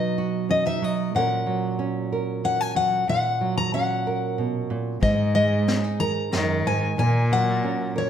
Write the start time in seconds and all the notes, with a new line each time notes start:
Already playing: B2 F#3 D#4 D#5
0.18 F#4
0.49 C#4 D#5
0.66 D#4 E5
0.82 F#3 D#5
1.15 A#2 F#3 A#3 C#4 A#4 F#5
1.47 F#3
1.79 C#4
2.12 A#4
2.44 C#4 F#5
2.61 G#5
2.75 F#3 F#5
3.08 A#2 F#5
3.41 F#3
3.57 A#5
3.74 C#4 F#5
4.07 A#4
4.38 B2
4.70 A#2
5.01 G#2 D#5, kick, closed hi-hat
5.35 G#3 D#5
5.67 C#4, snare, closed hi-hat
5.84 D#4
6.00 A#4 A#5
6.32 F#2 D#3, snare, closed hi-hat
6.65 G#2 G#5
6.98 A#2 G#5
7.31 F#3 F#5
7.64 C#4
7.96 A#4 C#5